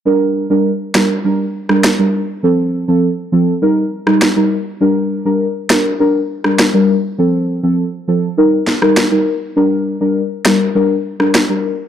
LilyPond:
<<
  \new Staff \with { instrumentName = "Synth stab" } { \time 4/4 \key g \minor \tempo 4 = 101 <g d' bes'>8. <g d' bes'>16 r8 <g d' bes'>16 r16 <g d' bes'>16 r8 <g d' bes'>16 r16 <g d' bes'>16 r8 | <f c' a'>8. <f c' a'>16 r8 <f c' a'>16 r16 <g ees' bes'>16 r8 <g ees' bes'>16 r16 <g ees' bes'>16 r8 | <g d' bes'>8. <g d' bes'>16 r8 <g d' bes'>16 r16 <g d' bes'>16 r8 <g d' bes'>16 r16 <g d' bes'>16 r8 | <f c' a'>8. <f c' a'>16 r8 <f c' a'>16 r16 <g ees' bes'>16 r8 <g ees' bes'>16 r16 <g ees' bes'>16 r8 |
<g d' bes'>8. <g d' bes'>16 r8 <g d' bes'>16 r16 <g d' bes'>16 r8 <g d' bes'>16 r16 <g d' bes'>16 r8 | }
  \new DrumStaff \with { instrumentName = "Drums" } \drummode { \time 4/4 r4 r8 <ss sn>8 r8. ss16 <ss sn>4 | r4 r4 r8. ss16 <ss sn>4 | r4 r8 <ss sn>8 r8. ss16 <ss sn>4 | r4 r4 r8 sn16 ss16 <ss sn>4 |
r4 r8 <ss sn>8 r8. ss16 <ss sn>4 | }
>>